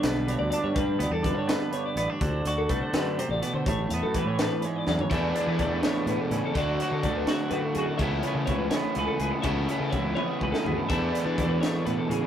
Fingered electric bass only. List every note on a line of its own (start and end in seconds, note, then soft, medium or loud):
0.04 0.34 B1 medium
0.39 0.50 D2 medium
0.64 0.95 G2 medium
1.00 1.10 D2 medium
1.10 1.34 E2 medium
1.34 1.56 G2 medium
1.96 2.06 A1 medium
2.21 2.41 D2 loud
2.45 2.66 D2 medium
2.69 2.79 C2 medium
2.93 3.24 F#2 medium
3.29 3.39 A1 medium
3.54 3.64 D3 medium
3.66 3.86 A1 loud
3.90 4.00 E2 medium
4.03 4.27 F#2 medium
4.27 4.47 A2 medium
4.87 4.97 E2 medium
5.11 5.31 E2 medium
5.47 5.61 E3 medium
5.59 5.79 E2 medium
6.06 6.17 A2 medium
6.31 6.41 A2 medium
6.55 6.76 D2 medium
6.91 7.05 D3 medium
7.03 7.24 D2 medium
7.51 7.61 F#2 medium
7.75 7.86 F#2 medium
7.99 8.20 C#2 medium
8.35 8.49 C#3 medium
8.47 8.68 C#2 medium
8.96 9.07 C#2 medium
9.19 9.30 C#2 medium
9.45 9.65 C#2 medium
9.80 9.94 C#3 medium
9.92 10.13 C#2 medium
10.42 10.52 C#2 medium
10.65 10.75 D2 medium
10.90 11.10 E2 medium
11.25 11.40 E3 medium
11.38 11.59 E2 medium
11.86 11.96 A2 medium
12.09 12.20 A2 medium